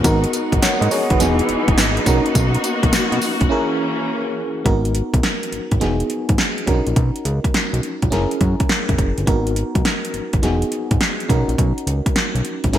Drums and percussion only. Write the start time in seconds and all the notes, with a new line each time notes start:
0.04 kick, closed hi-hat, tambourine
0.24 closed hi-hat
0.33 closed hi-hat, tambourine
0.52 kick, closed hi-hat
0.62 snare, clap, closed hi-hat, tambourine
0.82 closed hi-hat
0.91 open hi-hat, tambourine
1.10 kick, closed hi-hat
1.20 snare, closed hi-hat, tambourine
1.39 closed hi-hat
1.49 closed hi-hat
1.68 kick, closed hi-hat
1.78 snare, clap, closed hi-hat, tambourine
1.97 closed hi-hat
2.06 kick, closed hi-hat, tambourine
2.26 closed hi-hat
2.35 kick, closed hi-hat, tambourine
2.54 closed hi-hat
2.64 closed hi-hat, tambourine
2.83 kick, closed hi-hat
2.93 snare, clap, closed hi-hat, tambourine
3.12 closed hi-hat
3.22 open hi-hat, tambourine
3.41 kick, closed hi-hat
4.66 kick, closed hi-hat
4.85 closed hi-hat
4.95 closed hi-hat
5.14 kick, closed hi-hat
5.23 snare, clap, closed hi-hat
5.43 closed hi-hat
5.52 closed hi-hat
5.71 kick, closed hi-hat
5.81 snare, closed hi-hat
6.00 closed hi-hat
6.10 closed hi-hat
6.29 kick, closed hi-hat
6.38 snare, clap, closed hi-hat
6.58 closed hi-hat
6.67 kick, closed hi-hat
6.87 closed hi-hat
6.96 kick, closed hi-hat
7.16 closed hi-hat
7.25 closed hi-hat
7.44 kick, closed hi-hat
7.54 snare, clap, closed hi-hat
7.74 closed hi-hat
7.83 closed hi-hat
8.02 kick, closed hi-hat
8.12 snare, closed hi-hat
8.31 closed hi-hat
8.41 kick, closed hi-hat
8.60 kick, closed hi-hat
8.69 snare, clap, closed hi-hat
8.89 kick, closed hi-hat
8.98 kick, closed hi-hat
9.18 closed hi-hat
9.27 kick, closed hi-hat
9.47 closed hi-hat
9.56 closed hi-hat
9.75 kick, closed hi-hat
9.85 snare, clap, closed hi-hat
10.05 closed hi-hat
10.14 closed hi-hat
10.33 kick, closed hi-hat
10.43 snare, closed hi-hat
10.62 closed hi-hat
10.72 closed hi-hat
10.91 kick, closed hi-hat
11.01 snare, clap, closed hi-hat
11.20 closed hi-hat
11.29 kick, closed hi-hat
11.49 closed hi-hat
11.58 kick, closed hi-hat
11.78 closed hi-hat
11.87 closed hi-hat
12.06 kick, closed hi-hat
12.16 snare, clap, closed hi-hat
12.36 closed hi-hat
12.45 closed hi-hat
12.64 kick, closed hi-hat
12.73 snare, closed hi-hat